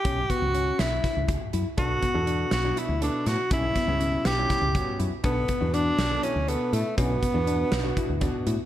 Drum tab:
HH |xxxxxxx|xxxxxxx|xxxxxxx|xxxxxxx|
SD |---oo--|---o--o|-o-oo--|---o---|
BD |oo--oo-|oo-----|oo--oo-|oo-----|

HH |xxxxxxx|
SD |---o---|
BD |oo--oo-|